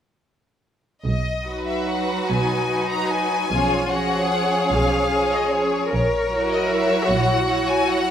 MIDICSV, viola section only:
0, 0, Header, 1, 2, 480
1, 0, Start_track
1, 0, Key_signature, 5, "major"
1, 0, Tempo, 824176
1, 609, Time_signature, 6, 3, 24, 8
1, 2042, Tempo, 804290
1, 3482, Tempo, 778210
1, 4831, End_track
2, 0, Start_track
2, 0, Title_t, "Viola section"
2, 0, Program_c, 0, 48
2, 851, Note_on_c, 0, 54, 41
2, 851, Note_on_c, 0, 63, 41
2, 1557, Note_off_c, 0, 54, 0
2, 1557, Note_off_c, 0, 63, 0
2, 1576, Note_on_c, 0, 54, 41
2, 1576, Note_on_c, 0, 63, 39
2, 2036, Note_off_c, 0, 54, 0
2, 2036, Note_off_c, 0, 63, 0
2, 2051, Note_on_c, 0, 53, 39
2, 2053, Note_on_c, 0, 61, 36
2, 2278, Note_off_c, 0, 61, 0
2, 2283, Note_off_c, 0, 53, 0
2, 2286, Note_on_c, 0, 61, 40
2, 2290, Note_on_c, 0, 53, 40
2, 2990, Note_off_c, 0, 61, 0
2, 2993, Note_off_c, 0, 53, 0
2, 3005, Note_on_c, 0, 61, 39
2, 3006, Note_on_c, 0, 53, 42
2, 3474, Note_off_c, 0, 61, 0
2, 3475, Note_off_c, 0, 53, 0
2, 3729, Note_on_c, 0, 54, 45
2, 3734, Note_on_c, 0, 64, 49
2, 4431, Note_off_c, 0, 54, 0
2, 4433, Note_off_c, 0, 64, 0
2, 4449, Note_on_c, 0, 64, 40
2, 4450, Note_on_c, 0, 54, 42
2, 4831, Note_off_c, 0, 54, 0
2, 4831, Note_off_c, 0, 64, 0
2, 4831, End_track
0, 0, End_of_file